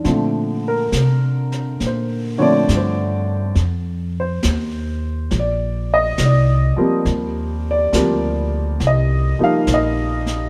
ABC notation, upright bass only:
X:1
M:4/4
L:1/8
Q:"Swing" 1/4=69
K:Bb
V:1 name="Upright bass" clef=bass
B,,2 C,2 B,,2 G,,2 | F,,2 E,,2 B,,,2 C,, z | E,,2 D,,2 C,, z B,,,2 |]